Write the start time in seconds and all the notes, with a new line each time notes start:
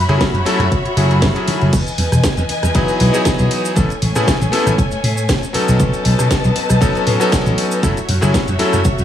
Already playing: F#4 C#5 E5 B5
0.09 F#1 F#3 A3 C#4 E4 G#4, cross-stick, closed hi-hat
0.21 kick, snare, closed hi-hat, ride
0.34 F#2, closed hi-hat
0.45 F#3 A3 C#4 E4 A4, muted slap bass stroke, snare, open hi-hat, ride
0.59 F#2, cross-stick, closed hi-hat
0.72 kick, closed hi-hat, ride
0.85 muted slap bass stroke, closed hi-hat
0.97 F#1 F#3 A3 C#4 E4 G#4, open hi-hat, ride
1.11 closed hi-hat
1.22 kick, snare, closed hi-hat, ride
1.36 F#3 A3 C#4 E4 G#4, closed hi-hat
1.48 D#3, open hi-hat, ride
1.61 F#1, closed hi-hat
1.73 E2 E3 B4 D#5 G#5, kick, closed hi-hat, crash, ride, cabasa
1.87 closed hi-hat, cabasa
1.98 E2, open hi-hat, ride
2.12 E1, cross-stick, closed hi-hat, cabasa
2.24 kick, snare, closed hi-hat, ride, cabasa
2.37 E2, closed hi-hat, cabasa
2.49 muted slap bass stroke, open hi-hat, ride
2.63 E2, cross-stick, closed hi-hat, cabasa
2.75 F#3 B3 D#4 E4 G#4, kick, closed hi-hat, ride, cabasa
2.88 closed hi-hat, cabasa
3.00 B1, open hi-hat, ride
3.13 F#3 B3 D#4 E4 G#4, closed hi-hat, cabasa
3.25 kick, snare, closed hi-hat, ride, cabasa
3.39 B1, closed hi-hat, cabasa
3.51 open hi-hat, ride
3.65 closed hi-hat, cabasa
3.76 A1 A3 B3 C#4 E4 A4 C#5 G#5, kick, closed hi-hat, ride, cabasa
3.90 closed hi-hat, cabasa
4.02 A1, open hi-hat, ride
4.15 A2 A3 B3 C#4 E4 G#4, cross-stick, closed hi-hat, cabasa
4.28 kick, snare, closed hi-hat, ride, cabasa
4.42 A1, closed hi-hat, cabasa
4.52 A3 B3 C#4 E4 A4, muted slap bass stroke, snare, open hi-hat, ride
4.67 A1, cross-stick, closed hi-hat, cabasa
4.78 kick, closed hi-hat, ride, cabasa
4.91 muted slap bass stroke, closed hi-hat, cabasa
5.04 A2, open hi-hat, ride
5.17 closed hi-hat, cabasa
5.29 kick, snare, closed hi-hat, ride, cabasa
5.43 closed hi-hat, cabasa
5.53 F#3 B3 C#4 D#4 A4 B4 D#5 A5, muted slap bass stroke, open hi-hat, ride
5.68 B1, closed hi-hat, cabasa
5.80 B1, kick, closed hi-hat, ride, cabasa
5.94 closed hi-hat, cabasa
6.05 B1, open hi-hat, ride
6.19 B2, cross-stick, closed hi-hat, cabasa
6.31 kick, snare, closed hi-hat, ride, cabasa
6.44 B1, closed hi-hat, cabasa
6.56 muted slap bass stroke, open hi-hat, ride
6.70 B1, cross-stick, closed hi-hat, cabasa
6.81 F#3 B3 C#4 D#4 A4, kick, closed hi-hat, ride, cabasa
6.95 closed hi-hat, cabasa
7.07 A2, open hi-hat, ride
7.20 F#3 B3 C#4 D#4 A4, closed hi-hat, cabasa
7.32 kick, snare, closed hi-hat, ride, cabasa
7.46 A1, closed hi-hat, cabasa
7.58 open hi-hat, ride
7.71 closed hi-hat, cabasa
7.83 F#2 F#3 A3 C#4 E4 F#4 A4 C#5 E5, kick, closed hi-hat, ride, cabasa
7.97 closed hi-hat, cabasa
8.09 F#2, open hi-hat, ride
8.21 F#1 F#3 A3 C#4 E4 G#4, cross-stick, closed hi-hat, cabasa
8.34 kick, snare, closed hi-hat, ride, cabasa
8.48 F#2, closed hi-hat, cabasa
8.59 F#3 A3 C#4 E4 A4, muted slap bass stroke, snare, open hi-hat, ride
8.73 F#2, cross-stick, closed hi-hat, cabasa
8.84 kick, closed hi-hat, ride, cabasa
8.98 E2, closed hi-hat, cabasa